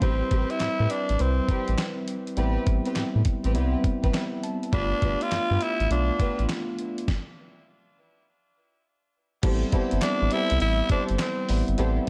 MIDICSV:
0, 0, Header, 1, 6, 480
1, 0, Start_track
1, 0, Key_signature, 0, "minor"
1, 0, Tempo, 588235
1, 16, Time_signature, 4, 2, 24, 8
1, 9868, End_track
2, 0, Start_track
2, 0, Title_t, "String section"
2, 0, Program_c, 0, 48
2, 9, Note_on_c, 0, 60, 88
2, 13, Note_on_c, 0, 67, 77
2, 15, Note_on_c, 0, 71, 97
2, 157, Note_off_c, 0, 60, 0
2, 159, Note_off_c, 0, 67, 0
2, 160, Note_off_c, 0, 71, 0
2, 254, Note_on_c, 0, 60, 72
2, 255, Note_on_c, 0, 67, 63
2, 260, Note_on_c, 0, 71, 82
2, 399, Note_off_c, 0, 60, 0
2, 400, Note_off_c, 0, 67, 0
2, 403, Note_off_c, 0, 71, 0
2, 646, Note_on_c, 0, 60, 63
2, 652, Note_on_c, 0, 67, 63
2, 653, Note_on_c, 0, 71, 81
2, 726, Note_off_c, 0, 60, 0
2, 729, Note_off_c, 0, 67, 0
2, 730, Note_off_c, 0, 71, 0
2, 1213, Note_on_c, 0, 60, 74
2, 1218, Note_on_c, 0, 67, 63
2, 1219, Note_on_c, 0, 71, 74
2, 1359, Note_off_c, 0, 60, 0
2, 1361, Note_off_c, 0, 67, 0
2, 1362, Note_off_c, 0, 71, 0
2, 1935, Note_on_c, 0, 60, 86
2, 1937, Note_on_c, 0, 67, 77
2, 1939, Note_on_c, 0, 71, 98
2, 2080, Note_off_c, 0, 60, 0
2, 2081, Note_off_c, 0, 67, 0
2, 2082, Note_off_c, 0, 71, 0
2, 2331, Note_on_c, 0, 60, 73
2, 2331, Note_on_c, 0, 67, 66
2, 2334, Note_on_c, 0, 71, 86
2, 2409, Note_off_c, 0, 60, 0
2, 2409, Note_off_c, 0, 67, 0
2, 2411, Note_off_c, 0, 71, 0
2, 2812, Note_on_c, 0, 60, 73
2, 2815, Note_on_c, 0, 67, 64
2, 2817, Note_on_c, 0, 71, 75
2, 2884, Note_off_c, 0, 60, 0
2, 2887, Note_off_c, 0, 67, 0
2, 2890, Note_off_c, 0, 71, 0
2, 2894, Note_on_c, 0, 60, 75
2, 2897, Note_on_c, 0, 67, 66
2, 2900, Note_on_c, 0, 71, 78
2, 3039, Note_off_c, 0, 60, 0
2, 3041, Note_off_c, 0, 67, 0
2, 3042, Note_off_c, 0, 71, 0
2, 3291, Note_on_c, 0, 60, 71
2, 3293, Note_on_c, 0, 67, 65
2, 3297, Note_on_c, 0, 71, 80
2, 3369, Note_off_c, 0, 60, 0
2, 3370, Note_off_c, 0, 67, 0
2, 3372, Note_off_c, 0, 71, 0
2, 3857, Note_on_c, 0, 65, 84
2, 3859, Note_on_c, 0, 67, 82
2, 3861, Note_on_c, 0, 71, 101
2, 4001, Note_off_c, 0, 65, 0
2, 4002, Note_off_c, 0, 67, 0
2, 4003, Note_off_c, 0, 71, 0
2, 4096, Note_on_c, 0, 65, 69
2, 4099, Note_on_c, 0, 67, 62
2, 4103, Note_on_c, 0, 71, 77
2, 4241, Note_off_c, 0, 65, 0
2, 4242, Note_off_c, 0, 67, 0
2, 4244, Note_off_c, 0, 71, 0
2, 4495, Note_on_c, 0, 65, 67
2, 4496, Note_on_c, 0, 67, 60
2, 4499, Note_on_c, 0, 71, 78
2, 4571, Note_off_c, 0, 65, 0
2, 4571, Note_off_c, 0, 67, 0
2, 4573, Note_off_c, 0, 71, 0
2, 5055, Note_on_c, 0, 65, 72
2, 5058, Note_on_c, 0, 67, 63
2, 5060, Note_on_c, 0, 71, 81
2, 5200, Note_off_c, 0, 65, 0
2, 5201, Note_off_c, 0, 67, 0
2, 5203, Note_off_c, 0, 71, 0
2, 7697, Note_on_c, 0, 67, 96
2, 7701, Note_on_c, 0, 69, 80
2, 7702, Note_on_c, 0, 72, 105
2, 7841, Note_off_c, 0, 67, 0
2, 7843, Note_off_c, 0, 69, 0
2, 7843, Note_off_c, 0, 72, 0
2, 7938, Note_on_c, 0, 67, 70
2, 7942, Note_on_c, 0, 69, 70
2, 7944, Note_on_c, 0, 72, 87
2, 8081, Note_off_c, 0, 67, 0
2, 8083, Note_off_c, 0, 69, 0
2, 8084, Note_off_c, 0, 72, 0
2, 8419, Note_on_c, 0, 67, 74
2, 8421, Note_on_c, 0, 69, 75
2, 8424, Note_on_c, 0, 72, 82
2, 8562, Note_off_c, 0, 67, 0
2, 8563, Note_off_c, 0, 69, 0
2, 8564, Note_off_c, 0, 72, 0
2, 8897, Note_on_c, 0, 67, 75
2, 8900, Note_on_c, 0, 69, 69
2, 8903, Note_on_c, 0, 72, 86
2, 9041, Note_off_c, 0, 67, 0
2, 9043, Note_off_c, 0, 69, 0
2, 9044, Note_off_c, 0, 72, 0
2, 9616, Note_on_c, 0, 67, 90
2, 9618, Note_on_c, 0, 69, 85
2, 9620, Note_on_c, 0, 72, 105
2, 9761, Note_off_c, 0, 67, 0
2, 9761, Note_off_c, 0, 69, 0
2, 9762, Note_off_c, 0, 72, 0
2, 9868, End_track
3, 0, Start_track
3, 0, Title_t, "Tenor saxophone"
3, 0, Program_c, 1, 66
3, 16, Note_on_c, 1, 60, 88
3, 412, Note_on_c, 1, 64, 108
3, 424, Note_off_c, 1, 60, 0
3, 741, Note_on_c, 1, 62, 91
3, 753, Note_off_c, 1, 64, 0
3, 987, Note_on_c, 1, 60, 77
3, 999, Note_off_c, 1, 62, 0
3, 1462, Note_off_c, 1, 60, 0
3, 3867, Note_on_c, 1, 62, 96
3, 4267, Note_on_c, 1, 65, 108
3, 4279, Note_off_c, 1, 62, 0
3, 4594, Note_on_c, 1, 64, 95
3, 4607, Note_off_c, 1, 65, 0
3, 4823, Note_off_c, 1, 64, 0
3, 4827, Note_on_c, 1, 62, 87
3, 5269, Note_off_c, 1, 62, 0
3, 8184, Note_on_c, 1, 62, 97
3, 8428, Note_on_c, 1, 64, 112
3, 8440, Note_off_c, 1, 62, 0
3, 8657, Note_off_c, 1, 64, 0
3, 8662, Note_on_c, 1, 64, 111
3, 8882, Note_off_c, 1, 64, 0
3, 8906, Note_on_c, 1, 62, 88
3, 9012, Note_off_c, 1, 62, 0
3, 9149, Note_on_c, 1, 60, 74
3, 9512, Note_off_c, 1, 60, 0
3, 9868, End_track
4, 0, Start_track
4, 0, Title_t, "Tine electric piano"
4, 0, Program_c, 2, 4
4, 0, Control_c, 2, 64, 127
4, 14, Note_on_c, 2, 55, 62
4, 17, Note_on_c, 2, 71, 62
4, 18, Note_on_c, 2, 60, 65
4, 22, Note_on_c, 2, 64, 73
4, 28, Control_c, 2, 64, 0
4, 150, Control_c, 2, 64, 127
4, 802, Note_off_c, 2, 55, 0
4, 804, Note_off_c, 2, 60, 0
4, 804, Note_off_c, 2, 71, 0
4, 806, Note_off_c, 2, 64, 0
4, 970, Note_on_c, 2, 55, 71
4, 974, Note_on_c, 2, 71, 68
4, 978, Note_on_c, 2, 60, 63
4, 981, Note_on_c, 2, 64, 77
4, 1760, Note_off_c, 2, 55, 0
4, 1762, Note_off_c, 2, 71, 0
4, 1764, Note_off_c, 2, 60, 0
4, 1766, Note_off_c, 2, 64, 0
4, 1932, Note_on_c, 2, 55, 80
4, 1936, Note_on_c, 2, 59, 76
4, 1939, Note_on_c, 2, 60, 74
4, 1942, Note_on_c, 2, 64, 91
4, 2722, Note_off_c, 2, 55, 0
4, 2723, Note_off_c, 2, 59, 0
4, 2725, Note_off_c, 2, 60, 0
4, 2727, Note_off_c, 2, 64, 0
4, 2891, Note_on_c, 2, 55, 82
4, 2892, Note_on_c, 2, 59, 83
4, 2896, Note_on_c, 2, 60, 78
4, 2899, Note_on_c, 2, 64, 99
4, 3384, Note_on_c, 2, 76, 69
4, 3604, Note_off_c, 2, 76, 0
4, 3619, Note_on_c, 2, 81, 68
4, 3681, Note_off_c, 2, 55, 0
4, 3682, Note_off_c, 2, 59, 0
4, 3683, Note_off_c, 2, 60, 0
4, 3685, Note_off_c, 2, 64, 0
4, 3841, Note_off_c, 2, 81, 0
4, 3855, Note_on_c, 2, 57, 71
4, 3860, Note_on_c, 2, 59, 66
4, 3863, Note_on_c, 2, 62, 60
4, 3864, Note_on_c, 2, 65, 75
4, 3867, Control_c, 2, 64, 0
4, 4029, Control_c, 2, 64, 127
4, 4643, Note_off_c, 2, 57, 0
4, 4646, Note_off_c, 2, 59, 0
4, 4647, Note_off_c, 2, 62, 0
4, 4648, Note_off_c, 2, 65, 0
4, 4817, Note_on_c, 2, 57, 68
4, 4818, Note_on_c, 2, 59, 67
4, 4824, Note_on_c, 2, 62, 60
4, 4827, Note_on_c, 2, 65, 82
4, 5604, Note_off_c, 2, 57, 0
4, 5604, Note_off_c, 2, 59, 0
4, 5607, Note_off_c, 2, 62, 0
4, 5609, Note_off_c, 2, 65, 0
4, 5786, Control_c, 2, 64, 0
4, 7697, Note_on_c, 2, 55, 89
4, 7700, Note_on_c, 2, 59, 74
4, 7704, Note_on_c, 2, 60, 79
4, 7706, Note_on_c, 2, 64, 91
4, 7850, Control_c, 2, 64, 127
4, 7904, Note_off_c, 2, 55, 0
4, 7905, Note_off_c, 2, 59, 0
4, 7907, Note_off_c, 2, 60, 0
4, 7909, Note_off_c, 2, 64, 0
4, 7932, Note_on_c, 2, 55, 91
4, 7939, Note_on_c, 2, 59, 86
4, 7941, Note_on_c, 2, 60, 88
4, 7942, Note_on_c, 2, 64, 110
4, 8721, Note_off_c, 2, 55, 0
4, 8725, Note_off_c, 2, 59, 0
4, 8726, Note_off_c, 2, 60, 0
4, 8726, Note_off_c, 2, 64, 0
4, 9373, Note_on_c, 2, 55, 69
4, 9378, Note_on_c, 2, 59, 69
4, 9380, Note_on_c, 2, 60, 63
4, 9382, Note_on_c, 2, 64, 78
4, 9582, Note_off_c, 2, 55, 0
4, 9585, Note_off_c, 2, 59, 0
4, 9585, Note_off_c, 2, 60, 0
4, 9587, Note_off_c, 2, 64, 0
4, 9613, Note_on_c, 2, 55, 88
4, 9616, Note_on_c, 2, 59, 77
4, 9620, Note_on_c, 2, 60, 83
4, 9621, Note_on_c, 2, 64, 91
4, 9822, Note_off_c, 2, 55, 0
4, 9824, Note_off_c, 2, 59, 0
4, 9825, Note_off_c, 2, 60, 0
4, 9826, Note_off_c, 2, 64, 0
4, 9868, End_track
5, 0, Start_track
5, 0, Title_t, "Analog synth bass"
5, 0, Program_c, 3, 38
5, 16, Note_on_c, 3, 33, 102
5, 185, Note_off_c, 3, 33, 0
5, 256, Note_on_c, 3, 33, 90
5, 367, Note_off_c, 3, 33, 0
5, 498, Note_on_c, 3, 45, 50
5, 560, Note_off_c, 3, 45, 0
5, 653, Note_on_c, 3, 45, 108
5, 712, Note_off_c, 3, 45, 0
5, 896, Note_on_c, 3, 33, 89
5, 954, Note_off_c, 3, 33, 0
5, 980, Note_on_c, 3, 36, 91
5, 1148, Note_off_c, 3, 36, 0
5, 1376, Note_on_c, 3, 33, 88
5, 1434, Note_off_c, 3, 33, 0
5, 1937, Note_on_c, 3, 33, 102
5, 2106, Note_off_c, 3, 33, 0
5, 2178, Note_on_c, 3, 33, 79
5, 2288, Note_off_c, 3, 33, 0
5, 2418, Note_on_c, 3, 45, 49
5, 2480, Note_off_c, 3, 45, 0
5, 2575, Note_on_c, 3, 45, 104
5, 2633, Note_off_c, 3, 45, 0
5, 2813, Note_on_c, 3, 33, 96
5, 2897, Note_on_c, 3, 36, 87
5, 2910, Note_off_c, 3, 33, 0
5, 3066, Note_off_c, 3, 36, 0
5, 3294, Note_on_c, 3, 33, 97
5, 3352, Note_off_c, 3, 33, 0
5, 3859, Note_on_c, 3, 31, 107
5, 4027, Note_off_c, 3, 31, 0
5, 4100, Note_on_c, 3, 31, 95
5, 4209, Note_off_c, 3, 31, 0
5, 4337, Note_on_c, 3, 43, 46
5, 4400, Note_off_c, 3, 43, 0
5, 4495, Note_on_c, 3, 43, 101
5, 4553, Note_off_c, 3, 43, 0
5, 4735, Note_on_c, 3, 33, 98
5, 4793, Note_off_c, 3, 33, 0
5, 4816, Note_on_c, 3, 35, 98
5, 4986, Note_off_c, 3, 35, 0
5, 5216, Note_on_c, 3, 33, 83
5, 5274, Note_off_c, 3, 33, 0
5, 7698, Note_on_c, 3, 33, 112
5, 7867, Note_off_c, 3, 33, 0
5, 8100, Note_on_c, 3, 31, 95
5, 8156, Note_off_c, 3, 31, 0
5, 8339, Note_on_c, 3, 33, 99
5, 8396, Note_off_c, 3, 33, 0
5, 8580, Note_on_c, 3, 36, 91
5, 8636, Note_off_c, 3, 36, 0
5, 8661, Note_on_c, 3, 33, 107
5, 8829, Note_off_c, 3, 33, 0
5, 9058, Note_on_c, 3, 31, 87
5, 9115, Note_off_c, 3, 31, 0
5, 9382, Note_on_c, 3, 33, 99
5, 9490, Note_off_c, 3, 33, 0
5, 9534, Note_on_c, 3, 31, 93
5, 9593, Note_off_c, 3, 31, 0
5, 9620, Note_on_c, 3, 33, 114
5, 9788, Note_off_c, 3, 33, 0
5, 9868, End_track
6, 0, Start_track
6, 0, Title_t, "Drums"
6, 15, Note_on_c, 9, 36, 107
6, 15, Note_on_c, 9, 42, 66
6, 96, Note_off_c, 9, 42, 0
6, 97, Note_off_c, 9, 36, 0
6, 253, Note_on_c, 9, 42, 66
6, 256, Note_on_c, 9, 36, 88
6, 334, Note_off_c, 9, 42, 0
6, 337, Note_off_c, 9, 36, 0
6, 408, Note_on_c, 9, 42, 54
6, 489, Note_off_c, 9, 42, 0
6, 490, Note_on_c, 9, 38, 83
6, 490, Note_on_c, 9, 42, 73
6, 494, Note_on_c, 9, 39, 75
6, 572, Note_off_c, 9, 38, 0
6, 572, Note_off_c, 9, 42, 0
6, 576, Note_off_c, 9, 39, 0
6, 733, Note_on_c, 9, 42, 86
6, 814, Note_off_c, 9, 42, 0
6, 890, Note_on_c, 9, 42, 51
6, 972, Note_off_c, 9, 42, 0
6, 973, Note_on_c, 9, 42, 69
6, 1055, Note_off_c, 9, 42, 0
6, 1212, Note_on_c, 9, 36, 97
6, 1212, Note_on_c, 9, 42, 81
6, 1294, Note_off_c, 9, 36, 0
6, 1294, Note_off_c, 9, 42, 0
6, 1368, Note_on_c, 9, 42, 48
6, 1450, Note_off_c, 9, 42, 0
6, 1454, Note_on_c, 9, 38, 106
6, 1455, Note_on_c, 9, 42, 81
6, 1458, Note_on_c, 9, 39, 82
6, 1536, Note_off_c, 9, 38, 0
6, 1537, Note_off_c, 9, 42, 0
6, 1539, Note_off_c, 9, 39, 0
6, 1694, Note_on_c, 9, 42, 72
6, 1776, Note_off_c, 9, 42, 0
6, 1854, Note_on_c, 9, 42, 46
6, 1932, Note_off_c, 9, 42, 0
6, 1932, Note_on_c, 9, 42, 63
6, 2014, Note_off_c, 9, 42, 0
6, 2175, Note_on_c, 9, 42, 66
6, 2177, Note_on_c, 9, 36, 96
6, 2257, Note_off_c, 9, 42, 0
6, 2259, Note_off_c, 9, 36, 0
6, 2329, Note_on_c, 9, 42, 58
6, 2411, Note_off_c, 9, 42, 0
6, 2412, Note_on_c, 9, 38, 90
6, 2412, Note_on_c, 9, 42, 71
6, 2416, Note_on_c, 9, 39, 70
6, 2494, Note_off_c, 9, 38, 0
6, 2494, Note_off_c, 9, 42, 0
6, 2498, Note_off_c, 9, 39, 0
6, 2651, Note_on_c, 9, 42, 81
6, 2656, Note_on_c, 9, 36, 88
6, 2732, Note_off_c, 9, 42, 0
6, 2738, Note_off_c, 9, 36, 0
6, 2809, Note_on_c, 9, 42, 54
6, 2890, Note_off_c, 9, 42, 0
6, 2895, Note_on_c, 9, 42, 72
6, 2976, Note_off_c, 9, 42, 0
6, 3134, Note_on_c, 9, 36, 100
6, 3136, Note_on_c, 9, 42, 82
6, 3216, Note_off_c, 9, 36, 0
6, 3217, Note_off_c, 9, 42, 0
6, 3294, Note_on_c, 9, 42, 47
6, 3295, Note_on_c, 9, 36, 87
6, 3375, Note_off_c, 9, 42, 0
6, 3377, Note_off_c, 9, 36, 0
6, 3379, Note_on_c, 9, 38, 101
6, 3380, Note_on_c, 9, 42, 76
6, 3382, Note_on_c, 9, 39, 78
6, 3460, Note_off_c, 9, 38, 0
6, 3461, Note_off_c, 9, 42, 0
6, 3464, Note_off_c, 9, 39, 0
6, 3619, Note_on_c, 9, 42, 67
6, 3700, Note_off_c, 9, 42, 0
6, 3779, Note_on_c, 9, 42, 48
6, 3857, Note_off_c, 9, 42, 0
6, 3857, Note_on_c, 9, 42, 65
6, 3858, Note_on_c, 9, 36, 117
6, 3939, Note_off_c, 9, 42, 0
6, 3940, Note_off_c, 9, 36, 0
6, 4097, Note_on_c, 9, 42, 60
6, 4099, Note_on_c, 9, 36, 97
6, 4178, Note_off_c, 9, 42, 0
6, 4181, Note_off_c, 9, 36, 0
6, 4252, Note_on_c, 9, 42, 56
6, 4334, Note_off_c, 9, 42, 0
6, 4338, Note_on_c, 9, 38, 84
6, 4338, Note_on_c, 9, 42, 67
6, 4342, Note_on_c, 9, 39, 72
6, 4419, Note_off_c, 9, 42, 0
6, 4420, Note_off_c, 9, 38, 0
6, 4423, Note_off_c, 9, 39, 0
6, 4575, Note_on_c, 9, 42, 76
6, 4656, Note_off_c, 9, 42, 0
6, 4735, Note_on_c, 9, 42, 52
6, 4817, Note_off_c, 9, 42, 0
6, 4820, Note_on_c, 9, 42, 71
6, 4901, Note_off_c, 9, 42, 0
6, 5056, Note_on_c, 9, 36, 94
6, 5056, Note_on_c, 9, 42, 80
6, 5138, Note_off_c, 9, 36, 0
6, 5138, Note_off_c, 9, 42, 0
6, 5214, Note_on_c, 9, 42, 45
6, 5295, Note_off_c, 9, 42, 0
6, 5299, Note_on_c, 9, 38, 106
6, 5299, Note_on_c, 9, 42, 80
6, 5302, Note_on_c, 9, 39, 87
6, 5380, Note_off_c, 9, 38, 0
6, 5381, Note_off_c, 9, 42, 0
6, 5384, Note_off_c, 9, 39, 0
6, 5537, Note_on_c, 9, 42, 68
6, 5618, Note_off_c, 9, 42, 0
6, 5696, Note_on_c, 9, 42, 49
6, 5778, Note_off_c, 9, 42, 0
6, 5778, Note_on_c, 9, 36, 101
6, 5779, Note_on_c, 9, 38, 84
6, 5859, Note_off_c, 9, 36, 0
6, 5861, Note_off_c, 9, 38, 0
6, 7695, Note_on_c, 9, 42, 69
6, 7695, Note_on_c, 9, 49, 95
6, 7698, Note_on_c, 9, 36, 110
6, 7777, Note_off_c, 9, 42, 0
6, 7777, Note_off_c, 9, 49, 0
6, 7780, Note_off_c, 9, 36, 0
6, 7935, Note_on_c, 9, 42, 67
6, 7938, Note_on_c, 9, 36, 102
6, 8017, Note_off_c, 9, 42, 0
6, 8020, Note_off_c, 9, 36, 0
6, 8089, Note_on_c, 9, 42, 59
6, 8171, Note_off_c, 9, 42, 0
6, 8172, Note_on_c, 9, 38, 94
6, 8172, Note_on_c, 9, 42, 75
6, 8176, Note_on_c, 9, 39, 74
6, 8177, Note_off_c, 9, 39, 0
6, 8177, Note_on_c, 9, 39, 93
6, 8253, Note_off_c, 9, 42, 0
6, 8254, Note_off_c, 9, 38, 0
6, 8259, Note_off_c, 9, 39, 0
6, 8410, Note_on_c, 9, 42, 82
6, 8492, Note_off_c, 9, 42, 0
6, 8568, Note_on_c, 9, 42, 57
6, 8649, Note_off_c, 9, 42, 0
6, 8652, Note_on_c, 9, 42, 76
6, 8733, Note_off_c, 9, 42, 0
6, 8890, Note_on_c, 9, 42, 82
6, 8893, Note_on_c, 9, 36, 99
6, 8971, Note_off_c, 9, 42, 0
6, 8974, Note_off_c, 9, 36, 0
6, 9046, Note_on_c, 9, 42, 48
6, 9128, Note_off_c, 9, 42, 0
6, 9132, Note_on_c, 9, 38, 110
6, 9133, Note_on_c, 9, 42, 82
6, 9135, Note_on_c, 9, 39, 85
6, 9136, Note_off_c, 9, 39, 0
6, 9136, Note_on_c, 9, 39, 84
6, 9213, Note_off_c, 9, 38, 0
6, 9214, Note_off_c, 9, 42, 0
6, 9217, Note_off_c, 9, 39, 0
6, 9373, Note_on_c, 9, 46, 71
6, 9455, Note_off_c, 9, 46, 0
6, 9531, Note_on_c, 9, 42, 49
6, 9612, Note_off_c, 9, 42, 0
6, 9612, Note_on_c, 9, 42, 68
6, 9693, Note_off_c, 9, 42, 0
6, 9868, End_track
0, 0, End_of_file